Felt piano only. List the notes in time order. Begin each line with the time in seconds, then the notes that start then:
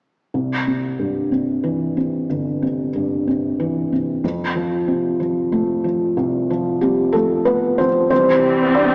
0.34 C2
0.67 C3
0.99 G2
1.32 C3
1.64 E3
1.97 C3
2.30 G1
2.62 C3
2.96 G2
3.27 C3
3.60 E3
3.93 C3
4.24 F2
4.56 F3
4.88 C3
5.20 F3
5.52 A3
5.84 F3
6.17 C2
6.50 F3
6.81 C3 G3 G4
7.12 F3 A3 A4
7.45 A3 B3 B4
7.78 F3 C4 C5
8.10 C3 E3 G3 C4 C5
8.75 D4 D5